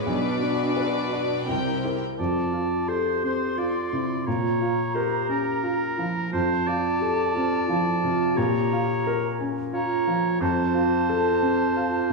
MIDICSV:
0, 0, Header, 1, 8, 480
1, 0, Start_track
1, 0, Key_signature, -1, "major"
1, 0, Tempo, 700117
1, 51, Time_signature, 3, 2, 24, 8
1, 2451, Tempo, 688863
1, 4371, Tempo, 678733
1, 8470, End_track
2, 0, Start_track
2, 0, Title_t, "Flute"
2, 0, Program_c, 0, 73
2, 1494, Note_on_c, 0, 81, 41
2, 1975, Note_on_c, 0, 84, 50
2, 1985, Note_off_c, 0, 81, 0
2, 2937, Note_on_c, 0, 82, 44
2, 2947, Note_off_c, 0, 84, 0
2, 4361, Note_off_c, 0, 82, 0
2, 4365, Note_on_c, 0, 81, 55
2, 5310, Note_off_c, 0, 81, 0
2, 5334, Note_on_c, 0, 81, 55
2, 5810, Note_on_c, 0, 82, 50
2, 5821, Note_off_c, 0, 81, 0
2, 6582, Note_off_c, 0, 82, 0
2, 6781, Note_on_c, 0, 82, 60
2, 7229, Note_off_c, 0, 82, 0
2, 7259, Note_on_c, 0, 81, 58
2, 8470, Note_off_c, 0, 81, 0
2, 8470, End_track
3, 0, Start_track
3, 0, Title_t, "Oboe"
3, 0, Program_c, 1, 68
3, 1501, Note_on_c, 1, 74, 38
3, 1979, Note_on_c, 1, 72, 44
3, 1989, Note_off_c, 1, 74, 0
3, 2215, Note_off_c, 1, 72, 0
3, 2223, Note_on_c, 1, 72, 42
3, 2456, Note_on_c, 1, 74, 41
3, 2466, Note_off_c, 1, 72, 0
3, 2926, Note_off_c, 1, 74, 0
3, 2930, Note_on_c, 1, 73, 39
3, 3405, Note_on_c, 1, 72, 48
3, 3415, Note_off_c, 1, 73, 0
3, 3644, Note_off_c, 1, 72, 0
3, 3648, Note_on_c, 1, 70, 47
3, 4356, Note_off_c, 1, 70, 0
3, 4368, Note_on_c, 1, 72, 51
3, 4611, Note_on_c, 1, 74, 53
3, 4621, Note_off_c, 1, 72, 0
3, 5814, Note_on_c, 1, 73, 57
3, 5824, Note_off_c, 1, 74, 0
3, 6584, Note_off_c, 1, 73, 0
3, 6779, Note_on_c, 1, 73, 57
3, 7228, Note_off_c, 1, 73, 0
3, 7258, Note_on_c, 1, 72, 57
3, 8470, Note_off_c, 1, 72, 0
3, 8470, End_track
4, 0, Start_track
4, 0, Title_t, "Violin section"
4, 0, Program_c, 2, 48
4, 34, Note_on_c, 2, 71, 52
4, 36, Note_on_c, 2, 74, 54
4, 982, Note_off_c, 2, 71, 0
4, 983, Note_off_c, 2, 74, 0
4, 1010, Note_on_c, 2, 70, 41
4, 1012, Note_on_c, 2, 79, 43
4, 1357, Note_off_c, 2, 70, 0
4, 1358, Note_off_c, 2, 79, 0
4, 8470, End_track
5, 0, Start_track
5, 0, Title_t, "Clarinet"
5, 0, Program_c, 3, 71
5, 1497, Note_on_c, 3, 65, 40
5, 1980, Note_on_c, 3, 67, 44
5, 1990, Note_off_c, 3, 65, 0
5, 2447, Note_on_c, 3, 65, 43
5, 2458, Note_off_c, 3, 67, 0
5, 2692, Note_on_c, 3, 64, 48
5, 2702, Note_off_c, 3, 65, 0
5, 2927, Note_on_c, 3, 65, 46
5, 2938, Note_off_c, 3, 64, 0
5, 3168, Note_off_c, 3, 65, 0
5, 3175, Note_on_c, 3, 65, 49
5, 3404, Note_on_c, 3, 67, 45
5, 3414, Note_off_c, 3, 65, 0
5, 3884, Note_on_c, 3, 65, 46
5, 3895, Note_off_c, 3, 67, 0
5, 4114, Note_on_c, 3, 64, 46
5, 4125, Note_off_c, 3, 65, 0
5, 4354, Note_off_c, 3, 64, 0
5, 4359, Note_on_c, 3, 65, 44
5, 4849, Note_on_c, 3, 67, 51
5, 4859, Note_off_c, 3, 65, 0
5, 5081, Note_off_c, 3, 67, 0
5, 5085, Note_on_c, 3, 65, 56
5, 5310, Note_off_c, 3, 65, 0
5, 5314, Note_on_c, 3, 64, 47
5, 5549, Note_off_c, 3, 64, 0
5, 5553, Note_on_c, 3, 65, 61
5, 5800, Note_on_c, 3, 67, 55
5, 5811, Note_off_c, 3, 65, 0
5, 6577, Note_off_c, 3, 67, 0
5, 6766, Note_on_c, 3, 65, 50
5, 7221, Note_off_c, 3, 65, 0
5, 7246, Note_on_c, 3, 65, 60
5, 8470, Note_off_c, 3, 65, 0
5, 8470, End_track
6, 0, Start_track
6, 0, Title_t, "Grand piano"
6, 0, Program_c, 4, 0
6, 0, Control_c, 4, 64, 127
6, 0, Note_on_c, 4, 73, 44
6, 43, Note_on_c, 4, 35, 50
6, 63, Control_c, 4, 64, 0
6, 70, Note_off_c, 4, 73, 0
6, 163, Control_c, 4, 64, 127
6, 283, Note_on_c, 4, 62, 35
6, 524, Note_on_c, 4, 71, 41
6, 667, Note_off_c, 4, 62, 0
6, 766, Note_on_c, 4, 74, 36
6, 911, Note_off_c, 4, 71, 0
6, 978, Note_off_c, 4, 35, 0
6, 1009, Note_off_c, 4, 74, 0
6, 1021, Note_on_c, 4, 36, 38
6, 1023, Control_c, 4, 64, 0
6, 1126, Control_c, 4, 64, 127
6, 1265, Note_on_c, 4, 64, 33
6, 1269, Note_on_c, 4, 70, 35
6, 1478, Note_off_c, 4, 64, 0
6, 1480, Note_off_c, 4, 70, 0
6, 1487, Note_off_c, 4, 36, 0
6, 1504, Note_on_c, 4, 41, 42
6, 1509, Control_c, 4, 64, 0
6, 1621, Control_c, 4, 64, 127
6, 1734, Note_on_c, 4, 65, 36
6, 1976, Note_on_c, 4, 69, 40
6, 2117, Note_off_c, 4, 65, 0
6, 2218, Note_on_c, 4, 60, 30
6, 2357, Note_off_c, 4, 69, 0
6, 2454, Note_on_c, 4, 65, 37
6, 2598, Note_off_c, 4, 60, 0
6, 2696, Note_on_c, 4, 48, 38
6, 2838, Note_off_c, 4, 65, 0
6, 2908, Note_off_c, 4, 41, 0
6, 2934, Note_off_c, 4, 48, 0
6, 2940, Note_on_c, 4, 46, 44
6, 2944, Control_c, 4, 64, 0
6, 3056, Control_c, 4, 64, 127
6, 3174, Note_on_c, 4, 65, 36
6, 3411, Note_on_c, 4, 70, 42
6, 3555, Note_off_c, 4, 65, 0
6, 3646, Note_on_c, 4, 61, 38
6, 3794, Note_off_c, 4, 70, 0
6, 3886, Note_on_c, 4, 65, 37
6, 4033, Note_off_c, 4, 61, 0
6, 4131, Note_on_c, 4, 53, 36
6, 4273, Note_off_c, 4, 65, 0
6, 4346, Note_off_c, 4, 46, 0
6, 4371, Note_off_c, 4, 53, 0
6, 4372, Note_on_c, 4, 41, 48
6, 4383, Control_c, 4, 64, 0
6, 4490, Control_c, 4, 64, 127
6, 4619, Note_on_c, 4, 65, 39
6, 4857, Note_on_c, 4, 69, 40
6, 5000, Note_off_c, 4, 65, 0
6, 5103, Note_on_c, 4, 60, 41
6, 5238, Note_off_c, 4, 69, 0
6, 5335, Note_on_c, 4, 53, 44
6, 5481, Note_off_c, 4, 60, 0
6, 5578, Note_on_c, 4, 48, 40
6, 5717, Note_off_c, 4, 53, 0
6, 5785, Note_off_c, 4, 41, 0
6, 5816, Note_off_c, 4, 48, 0
6, 5819, Note_on_c, 4, 46, 62
6, 5825, Control_c, 4, 64, 0
6, 5922, Control_c, 4, 64, 127
6, 6067, Note_on_c, 4, 65, 47
6, 6307, Note_on_c, 4, 70, 51
6, 6448, Note_off_c, 4, 65, 0
6, 6543, Note_on_c, 4, 61, 42
6, 6687, Note_off_c, 4, 70, 0
6, 6776, Note_on_c, 4, 65, 47
6, 6923, Note_off_c, 4, 61, 0
6, 7017, Note_on_c, 4, 53, 42
6, 7159, Note_off_c, 4, 65, 0
6, 7230, Note_off_c, 4, 46, 0
6, 7252, Note_on_c, 4, 41, 64
6, 7256, Note_off_c, 4, 53, 0
6, 7268, Control_c, 4, 64, 0
6, 7393, Control_c, 4, 64, 127
6, 7494, Note_on_c, 4, 65, 44
6, 7738, Note_on_c, 4, 69, 54
6, 7878, Note_off_c, 4, 65, 0
6, 7975, Note_on_c, 4, 60, 39
6, 8119, Note_off_c, 4, 69, 0
6, 8215, Note_on_c, 4, 65, 48
6, 8356, Note_off_c, 4, 60, 0
6, 8470, Note_off_c, 4, 41, 0
6, 8470, Note_off_c, 4, 65, 0
6, 8470, End_track
7, 0, Start_track
7, 0, Title_t, "Viola section"
7, 0, Program_c, 5, 48
7, 53, Note_on_c, 5, 62, 51
7, 53, Note_on_c, 5, 66, 49
7, 992, Note_off_c, 5, 62, 0
7, 1011, Note_off_c, 5, 66, 0
7, 1013, Note_on_c, 5, 64, 40
7, 1015, Note_on_c, 5, 60, 40
7, 1359, Note_off_c, 5, 64, 0
7, 1360, Note_off_c, 5, 60, 0
7, 8470, End_track
8, 0, Start_track
8, 0, Title_t, "Cello section"
8, 0, Program_c, 6, 48
8, 54, Note_on_c, 6, 47, 55
8, 992, Note_off_c, 6, 47, 0
8, 1006, Note_on_c, 6, 48, 46
8, 1355, Note_off_c, 6, 48, 0
8, 8470, End_track
0, 0, End_of_file